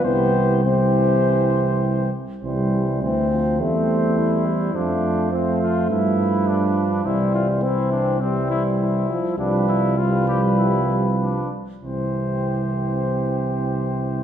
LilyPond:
<<
  \new Staff \with { instrumentName = "Flugelhorn" } { \time 4/4 \key c \major \tempo 4 = 101 g'4 g'2~ g'8 r8 | c''4 c''4 c''2 | c''4 c''4 b'2 | c''4 c''4 c''4. r8 |
b'4 b'2~ b'8 r8 | g'1 | }
  \new Staff \with { instrumentName = "Trumpet" } { \time 4/4 \key c \major c''4 c''2~ c''8 r8 | r2 c'4 e'4 | d'4 c'8 f'8 e'4 d'4 | e'8 f'8 e'8 d'8 c'8 e'8 e'4 |
d'8 e'8 f'8 g'8 e'8 r8 d'8 r8 | c''1 | }
  \new Staff \with { instrumentName = "French horn" } { \time 4/4 \key c \major b4 c'2~ c'8 r8 | g4 c'4 a4. g8 | a4 a2~ a8 r8 | g4 c'4 g4. f8 |
g4 g2~ g8 r8 | c'1 | }
  \new Staff \with { instrumentName = "Trombone" } { \clef bass \time 4/4 \key c \major e4 e2~ e8 r8 | e4 e8 f8 g2 | f4 f4 f2 | e4 e4 e4. r8 |
f4 f2~ f8 r8 | e1 | }
  \new Staff \with { instrumentName = "Tuba" } { \clef bass \time 4/4 \key c \major c,2.~ c,8 r8 | c,4 d,4 e,2 | f,2 g,2 | c,2.~ c,8 r8 |
c,2.~ c,8 r8 | c,1 | }
>>